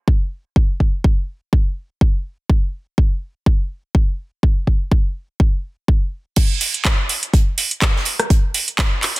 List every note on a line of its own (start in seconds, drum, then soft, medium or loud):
0.08 kick loud
0.56 kick loud
0.80 kick medium
1.04 kick loud
1.53 kick loud
2.01 kick loud
2.50 kick loud
2.98 kick loud
3.46 kick loud
3.95 kick loud
4.43 kick loud
4.67 kick medium
4.92 kick loud
5.40 kick loud
5.88 kick loud
6.36 kick loud
6.36 closed hi-hat medium
6.36 crash loud
6.61 closed hi-hat medium
6.61 open hi-hat loud
6.74 closed hi-hat medium
6.85 kick loud
6.85 snare loud
6.85 clap loud
6.85 closed hi-hat medium
7.09 closed hi-hat medium
7.09 open hi-hat loud
7.23 closed hi-hat medium
7.34 kick loud
7.34 closed hi-hat medium
7.58 closed hi-hat medium
7.58 open hi-hat loud
7.71 closed hi-hat medium
7.81 kick loud
7.81 snare loud
7.81 clap loud
7.81 closed hi-hat medium
7.96 snare medium
8.05 closed hi-hat medium
8.05 open hi-hat loud
8.20 cross-stick medium
8.20 closed hi-hat medium
8.30 kick loud
8.30 closed hi-hat medium
8.54 closed hi-hat medium
8.54 open hi-hat loud
8.68 closed hi-hat medium
8.79 kick loud
8.79 snare loud
8.79 clap loud
8.79 closed hi-hat medium
9.03 clap soft
9.03 closed hi-hat medium
9.03 open hi-hat loud
9.16 snare soft
9.16 closed hi-hat medium